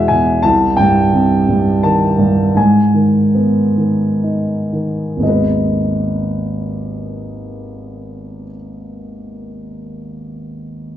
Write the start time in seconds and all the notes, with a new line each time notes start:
Already playing: E2 B2 E3 G#3 E5 F#5 G#5
0.08 B2 G#5
0.43 C2 A5
0.77 G2 G5
1.13 C3
1.48 G2
1.83 D#3 A5
2.18 G2
2.56 G#2 G#5
2.94 D#3
3.35 B3
3.77 D#3
4.23 D#4
4.73 D#3
5.17 G#1 D#2
5.22 G#3 B3 D#5
5.26 D#4 B4